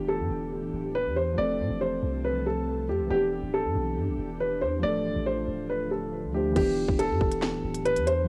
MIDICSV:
0, 0, Header, 1, 6, 480
1, 0, Start_track
1, 0, Tempo, 431655
1, 1535, Time_signature, 4, 2, 24, 8
1, 9207, End_track
2, 0, Start_track
2, 0, Title_t, "Grand piano"
2, 0, Program_c, 0, 0
2, 94, Note_on_c, 0, 69, 85
2, 1010, Note_off_c, 0, 69, 0
2, 1056, Note_on_c, 0, 71, 90
2, 1276, Note_off_c, 0, 71, 0
2, 1292, Note_on_c, 0, 72, 81
2, 1514, Note_off_c, 0, 72, 0
2, 1534, Note_on_c, 0, 74, 102
2, 1985, Note_off_c, 0, 74, 0
2, 2013, Note_on_c, 0, 72, 79
2, 2465, Note_off_c, 0, 72, 0
2, 2497, Note_on_c, 0, 71, 80
2, 2717, Note_off_c, 0, 71, 0
2, 2739, Note_on_c, 0, 69, 69
2, 3188, Note_off_c, 0, 69, 0
2, 3214, Note_on_c, 0, 67, 76
2, 3435, Note_off_c, 0, 67, 0
2, 3453, Note_on_c, 0, 67, 95
2, 3905, Note_off_c, 0, 67, 0
2, 3934, Note_on_c, 0, 69, 86
2, 4850, Note_off_c, 0, 69, 0
2, 4896, Note_on_c, 0, 71, 78
2, 5116, Note_off_c, 0, 71, 0
2, 5130, Note_on_c, 0, 72, 81
2, 5353, Note_off_c, 0, 72, 0
2, 5372, Note_on_c, 0, 74, 103
2, 5825, Note_off_c, 0, 74, 0
2, 5852, Note_on_c, 0, 72, 82
2, 6304, Note_off_c, 0, 72, 0
2, 6334, Note_on_c, 0, 71, 76
2, 6555, Note_off_c, 0, 71, 0
2, 6574, Note_on_c, 0, 69, 65
2, 7026, Note_off_c, 0, 69, 0
2, 7054, Note_on_c, 0, 67, 74
2, 7275, Note_off_c, 0, 67, 0
2, 7295, Note_on_c, 0, 67, 91
2, 7746, Note_off_c, 0, 67, 0
2, 7773, Note_on_c, 0, 69, 92
2, 8689, Note_off_c, 0, 69, 0
2, 8733, Note_on_c, 0, 71, 95
2, 8955, Note_off_c, 0, 71, 0
2, 8971, Note_on_c, 0, 72, 85
2, 9194, Note_off_c, 0, 72, 0
2, 9207, End_track
3, 0, Start_track
3, 0, Title_t, "Ambient pad"
3, 0, Program_c, 1, 92
3, 0, Note_on_c, 1, 52, 77
3, 0, Note_on_c, 1, 62, 69
3, 0, Note_on_c, 1, 67, 87
3, 1516, Note_off_c, 1, 52, 0
3, 1516, Note_off_c, 1, 62, 0
3, 1516, Note_off_c, 1, 67, 0
3, 1535, Note_on_c, 1, 53, 77
3, 1535, Note_on_c, 1, 60, 71
3, 1535, Note_on_c, 1, 69, 88
3, 3436, Note_off_c, 1, 53, 0
3, 3436, Note_off_c, 1, 60, 0
3, 3436, Note_off_c, 1, 69, 0
3, 3454, Note_on_c, 1, 52, 78
3, 3454, Note_on_c, 1, 62, 72
3, 3454, Note_on_c, 1, 67, 85
3, 5355, Note_off_c, 1, 52, 0
3, 5355, Note_off_c, 1, 62, 0
3, 5355, Note_off_c, 1, 67, 0
3, 5377, Note_on_c, 1, 50, 79
3, 5377, Note_on_c, 1, 65, 88
3, 5378, Note_on_c, 1, 57, 72
3, 7277, Note_off_c, 1, 50, 0
3, 7277, Note_off_c, 1, 57, 0
3, 7277, Note_off_c, 1, 65, 0
3, 9207, End_track
4, 0, Start_track
4, 0, Title_t, "Synth keys"
4, 0, Program_c, 2, 88
4, 0, Control_c, 2, 64, 127
4, 0, Note_on_c, 2, 52, 67
4, 0, Note_on_c, 2, 59, 58
4, 0, Note_on_c, 2, 62, 56
4, 0, Note_on_c, 2, 67, 77
4, 1471, Note_off_c, 2, 52, 0
4, 1486, Note_on_c, 2, 53, 63
4, 1488, Note_off_c, 2, 59, 0
4, 1505, Note_off_c, 2, 62, 0
4, 1520, Note_on_c, 2, 57, 63
4, 1522, Note_off_c, 2, 67, 0
4, 1549, Control_c, 2, 64, 0
4, 1554, Note_on_c, 2, 60, 55
4, 1588, Note_on_c, 2, 69, 69
4, 1751, Control_c, 2, 64, 127
4, 3392, Note_off_c, 2, 53, 0
4, 3406, Note_on_c, 2, 52, 67
4, 3409, Note_off_c, 2, 57, 0
4, 3426, Note_off_c, 2, 60, 0
4, 3439, Note_on_c, 2, 59, 59
4, 3444, Note_off_c, 2, 69, 0
4, 3471, Control_c, 2, 64, 0
4, 3473, Note_on_c, 2, 62, 64
4, 3507, Note_on_c, 2, 67, 66
4, 3661, Control_c, 2, 64, 127
4, 5312, Note_off_c, 2, 52, 0
4, 5326, Note_on_c, 2, 53, 65
4, 5328, Note_off_c, 2, 59, 0
4, 5346, Note_off_c, 2, 62, 0
4, 5360, Note_on_c, 2, 57, 59
4, 5363, Note_off_c, 2, 67, 0
4, 5391, Control_c, 2, 64, 0
4, 5394, Note_on_c, 2, 62, 62
4, 5427, Note_on_c, 2, 69, 74
4, 5589, Control_c, 2, 64, 127
4, 6996, Note_off_c, 2, 53, 0
4, 7014, Note_off_c, 2, 57, 0
4, 7030, Note_on_c, 2, 53, 47
4, 7031, Note_off_c, 2, 62, 0
4, 7047, Note_on_c, 2, 57, 45
4, 7048, Note_off_c, 2, 69, 0
4, 7065, Note_on_c, 2, 62, 48
4, 7081, Note_on_c, 2, 72, 56
4, 7246, Note_on_c, 2, 52, 68
4, 7280, Note_on_c, 2, 59, 63
4, 7283, Note_off_c, 2, 53, 0
4, 7291, Note_off_c, 2, 57, 0
4, 7300, Note_off_c, 2, 62, 0
4, 7308, Note_off_c, 2, 72, 0
4, 7309, Control_c, 2, 64, 0
4, 7313, Note_on_c, 2, 62, 62
4, 7347, Note_on_c, 2, 67, 73
4, 7534, Control_c, 2, 64, 127
4, 9152, Note_off_c, 2, 52, 0
4, 9165, Note_on_c, 2, 53, 65
4, 9169, Note_off_c, 2, 59, 0
4, 9186, Note_off_c, 2, 62, 0
4, 9203, Note_off_c, 2, 67, 0
4, 9207, Note_off_c, 2, 53, 0
4, 9207, End_track
5, 0, Start_track
5, 0, Title_t, "808-style bass"
5, 0, Program_c, 3, 38
5, 0, Note_on_c, 3, 28, 99
5, 214, Note_on_c, 3, 43, 97
5, 231, Note_off_c, 3, 28, 0
5, 329, Note_off_c, 3, 43, 0
5, 334, Note_on_c, 3, 28, 106
5, 694, Note_on_c, 3, 26, 100
5, 711, Note_off_c, 3, 28, 0
5, 808, Note_off_c, 3, 26, 0
5, 814, Note_on_c, 3, 26, 108
5, 1174, Note_on_c, 3, 40, 96
5, 1191, Note_off_c, 3, 26, 0
5, 1516, Note_off_c, 3, 40, 0
5, 1535, Note_on_c, 3, 29, 107
5, 1774, Note_on_c, 3, 45, 94
5, 1791, Note_off_c, 3, 29, 0
5, 1888, Note_off_c, 3, 45, 0
5, 1894, Note_on_c, 3, 29, 97
5, 2240, Note_off_c, 3, 29, 0
5, 2254, Note_on_c, 3, 36, 105
5, 3214, Note_on_c, 3, 41, 99
5, 3231, Note_off_c, 3, 36, 0
5, 3333, Note_on_c, 3, 36, 99
5, 3350, Note_off_c, 3, 41, 0
5, 3448, Note_off_c, 3, 36, 0
5, 3453, Note_on_c, 3, 28, 109
5, 3800, Note_off_c, 3, 28, 0
5, 3813, Note_on_c, 3, 26, 103
5, 4054, Note_on_c, 3, 43, 95
5, 4070, Note_off_c, 3, 26, 0
5, 4168, Note_off_c, 3, 43, 0
5, 4175, Note_on_c, 3, 35, 104
5, 4415, Note_on_c, 3, 43, 97
5, 4432, Note_off_c, 3, 35, 0
5, 4536, Note_on_c, 3, 35, 97
5, 4552, Note_off_c, 3, 43, 0
5, 4649, Note_off_c, 3, 35, 0
5, 4654, Note_on_c, 3, 28, 107
5, 5134, Note_on_c, 3, 40, 96
5, 5150, Note_off_c, 3, 28, 0
5, 5362, Note_off_c, 3, 40, 0
5, 5374, Note_on_c, 3, 26, 112
5, 5720, Note_off_c, 3, 26, 0
5, 5734, Note_on_c, 3, 33, 100
5, 6080, Note_off_c, 3, 33, 0
5, 6095, Note_on_c, 3, 26, 106
5, 6937, Note_on_c, 3, 38, 100
5, 6953, Note_off_c, 3, 26, 0
5, 7278, Note_off_c, 3, 38, 0
5, 7296, Note_on_c, 3, 28, 114
5, 7641, Note_off_c, 3, 28, 0
5, 7655, Note_on_c, 3, 28, 102
5, 7897, Note_on_c, 3, 43, 100
5, 7914, Note_off_c, 3, 28, 0
5, 8010, Note_off_c, 3, 43, 0
5, 8017, Note_on_c, 3, 28, 108
5, 8377, Note_on_c, 3, 26, 100
5, 8393, Note_off_c, 3, 28, 0
5, 8490, Note_off_c, 3, 26, 0
5, 8496, Note_on_c, 3, 26, 113
5, 8855, Note_on_c, 3, 40, 102
5, 8872, Note_off_c, 3, 26, 0
5, 9197, Note_off_c, 3, 40, 0
5, 9207, End_track
6, 0, Start_track
6, 0, Title_t, "Drums"
6, 7295, Note_on_c, 9, 42, 68
6, 7296, Note_on_c, 9, 36, 120
6, 7296, Note_on_c, 9, 49, 94
6, 7407, Note_off_c, 9, 36, 0
6, 7407, Note_off_c, 9, 42, 0
6, 7407, Note_off_c, 9, 49, 0
6, 7655, Note_on_c, 9, 36, 91
6, 7767, Note_off_c, 9, 36, 0
6, 7774, Note_on_c, 9, 42, 82
6, 7885, Note_off_c, 9, 42, 0
6, 8016, Note_on_c, 9, 36, 95
6, 8127, Note_off_c, 9, 36, 0
6, 8134, Note_on_c, 9, 42, 76
6, 8246, Note_off_c, 9, 42, 0
6, 8250, Note_on_c, 9, 39, 81
6, 8255, Note_on_c, 9, 38, 101
6, 8361, Note_off_c, 9, 39, 0
6, 8367, Note_off_c, 9, 38, 0
6, 8611, Note_on_c, 9, 42, 75
6, 8723, Note_off_c, 9, 42, 0
6, 8734, Note_on_c, 9, 42, 64
6, 8846, Note_off_c, 9, 42, 0
6, 8855, Note_on_c, 9, 42, 64
6, 8966, Note_off_c, 9, 42, 0
6, 8974, Note_on_c, 9, 42, 76
6, 9086, Note_off_c, 9, 42, 0
6, 9207, End_track
0, 0, End_of_file